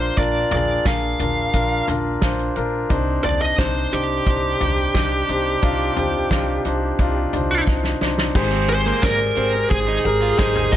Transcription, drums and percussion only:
0.17 kick, closed hi-hat
0.51 closed hi-hat, floor tom
0.85 kick, snare, closed hi-hat
1.20 closed hi-hat, floor tom
1.53 kick, closed hi-hat
1.88 closed hi-hat, floor tom
2.22 kick, snare, closed hi-hat
2.39 closed hi-hat
2.56 closed hi-hat
2.90 kick, closed hi-hat
3.24 closed hi-hat, floor tom
3.58 kick, snare, closed hi-hat
3.93 closed hi-hat
4.26 kick, closed hi-hat
4.61 closed hi-hat, floor tom
4.78 closed hi-hat
4.95 kick, snare, closed hi-hat
5.29 closed hi-hat
5.63 kick, closed hi-hat
5.96 closed hi-hat, floor tom
6.31 kick, snare, closed hi-hat
6.65 closed hi-hat
6.99 kick, closed hi-hat
7.33 closed hi-hat, floor tom
7.67 kick, snare
7.84 snare
8.01 snare
8.18 snare
8.35 kick, crash
8.69 ride
9.03 kick, snare, clap, ride
9.37 ride
9.71 kick, ride
10.05 ride
10.38 kick, snare, clap, ride
10.56 floor tom
10.72 kick, ride

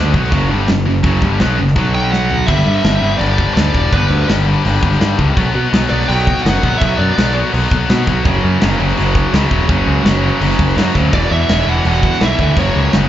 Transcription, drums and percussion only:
0.14 kick
0.24 snare
0.32 kick, open hi-hat
0.68 snare, open hi-hat
1.04 kick, open hi-hat
1.22 kick
1.39 snare, open hi-hat
1.68 snare
1.76 kick, open hi-hat
2.13 snare
2.31 floor tom
2.48 kick, crash
2.84 snare, crash
3.21 crash
3.38 kick
3.57 snare, crash
3.75 kick
3.93 kick, crash
4.29 snare, crash
4.65 crash
4.83 kick
4.93 snare
5.01 snare, crash
5.19 kick
5.37 kick, crash
5.73 snare, crash
6.01 snare
6.09 crash
6.27 kick
6.37 snare
6.46 snare, crash
6.63 kick
6.81 kick, crash
7.18 snare, crash
7.54 crash
7.71 kick
7.89 snare, crash
8.07 kick
8.25 kick, crash
8.61 snare, crash
8.89 snare
8.97 crash
9.15 kick
9.33 snare, crash
9.51 kick
9.69 kick, crash
10.05 snare, crash
10.41 crash
10.59 kick
10.69 snare
10.77 snare, crash
10.95 kick
11.13 kick, crash
11.49 snare, crash
11.85 crash
12.03 kick
12.13 snare
12.21 snare, crash
12.39 kick
12.57 kick, crash
12.93 snare, crash

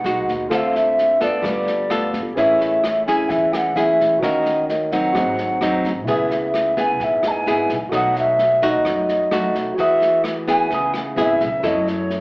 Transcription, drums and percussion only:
0.05 snare
0.28 kick, snare
0.51 kick, cross-stick, snare
0.75 snare
0.98 snare
1.21 kick, snare
1.44 kick, cross-stick, snare
1.67 snare
1.90 cross-stick, snare
2.13 kick, snare
2.37 kick, snare
2.60 snare
2.84 cross-stick, snare
3.07 kick, snare
3.30 kick, snare
3.53 cross-stick, snare
3.77 snare
4.00 kick, snare
4.23 kick, cross-stick, snare
4.45 snare
4.69 snare
4.92 kick, snare
5.15 kick, cross-stick, snare
5.38 snare
5.61 cross-stick, snare
5.84 kick, snare
6.07 kick, snare
6.30 snare
6.54 cross-stick, snare
6.77 kick, snare
7.00 kick, snare
7.23 cross-stick, snare
7.47 snare
7.69 kick, snare
7.92 kick, cross-stick, snare
8.16 snare
8.39 snare
8.62 kick, snare
8.85 kick, cross-stick, snare
9.08 snare
9.31 cross-stick, snare
9.55 kick, snare
9.78 kick, snare
10.01 snare
10.24 cross-stick, snare
10.48 kick, snare
10.71 kick, snare
10.94 cross-stick, snare
11.18 snare
11.40 kick, snare
11.64 kick, cross-stick, snare
11.87 snare
12.10 snare

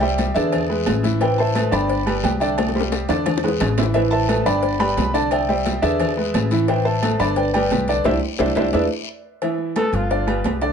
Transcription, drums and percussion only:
0.02 high conga
0.18 cowbell, high conga, low timbale, low agogo, short guiro
0.36 cowbell, high conga, short guiro
0.52 cowbell, high conga, low conga, low agogo, long guiro
0.71 high conga
0.86 cowbell, high conga, low timbale, low agogo, short guiro
1.04 cowbell, high conga, short guiro
1.21 cowbell, high conga, low agogo, long guiro
1.39 high conga
1.55 cowbell, high conga, low timbale, low agogo, short guiro
1.73 cowbell, high conga, low agogo, short guiro
1.90 cowbell, high conga, long guiro
2.07 high conga, low agogo
2.24 cowbell, high conga, low timbale, low agogo, short guiro
2.41 cowbell, short guiro
2.58 cowbell, high bongo, high conga, low agogo, long guiro
2.69 high bongo
2.76 high conga
2.80 high bongo
2.92 cowbell, high bongo, low timbale, low agogo, short guiro
3.09 cowbell, low conga, high timbale, short guiro
3.26 cowbell, low bongo, low conga, low agogo, long guiro
3.37 low bongo
3.44 low conga, high timbale
3.48 low bongo
3.60 cowbell, low bongo, low conga, low timbale, low agogo, short guiro
3.78 cowbell, low conga, low timbale, short guiro
3.83 low bongo
3.94 cowbell, high conga, low agogo, long guiro
4.13 high conga
4.29 cowbell, high conga, low timbale, low agogo, short guiro
4.46 cowbell, high conga, low agogo, short guiro
4.63 cowbell, high conga, long guiro
4.80 high conga, low agogo
4.97 cowbell, high conga, low timbale, low agogo, short guiro
5.15 cowbell, high conga, short guiro
5.31 cowbell, high conga, low agogo, long guiro
5.49 high conga
5.66 cowbell, high conga, low timbale, low agogo, short guiro
5.83 cowbell, high conga, short guiro
6.00 cowbell, high conga, low conga, low agogo, long guiro
6.17 high conga
6.34 cowbell, high conga, low timbale, low agogo, short guiro
6.51 cowbell, short guiro
6.68 cowbell, high conga, low agogo, long guiro
6.86 high conga
7.03 cowbell, high conga, low timbale, low agogo, short guiro
7.20 cowbell, low agogo, short guiro
7.36 cowbell, high conga, long guiro
7.54 high conga, low agogo
7.71 cowbell, high conga, low timbale, low agogo, short guiro
7.88 cowbell, high conga, short guiro
8.04 cowbell, high conga, high timbale, long guiro
8.39 cowbell, high conga, high timbale, long guiro
8.56 cowbell, high conga, high timbale, long guiro
8.73 cowbell, high conga, high timbale, long guiro
9.42 cowbell, high conga, low agogo
9.58 high conga
9.76 cowbell, high conga, low timbale, low agogo
9.93 cowbell, high conga, low agogo
10.11 cowbell, high conga
10.27 high conga, low agogo
10.44 cowbell, high conga, low timbale, low agogo
10.61 cowbell

